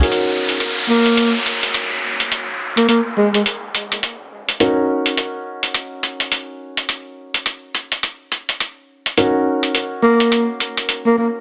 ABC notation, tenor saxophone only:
X:1
M:4/4
L:1/16
Q:"Swing 16ths" 1/4=105
K:Ebm
V:1 name="Tenor saxophone"
z6 B,3 z6 z | z3 B, B, z A, A, z8 | z16 | z16 |
z6 B,3 z4 B, B, z |]